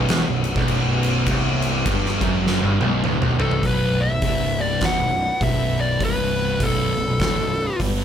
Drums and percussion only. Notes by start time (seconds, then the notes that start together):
0.08 snare, crash
0.44 crash
0.56 kick
0.68 crash
1.03 crash
1.26 kick, crash
1.62 crash
1.86 kick, crash
2.06 snare
2.21 kick, crash
2.47 snare
2.81 high tom
3.04 mid tom
3.22 mid tom
3.40 floor tom
3.51 floor tom
3.63 kick, open hi-hat
4.22 kick, open hi-hat
4.81 kick, snare, open hi-hat
5.41 kick, open hi-hat
6.00 kick, open hi-hat
6.60 kick, open hi-hat
7.20 kick, snare, open hi-hat
7.80 kick, open hi-hat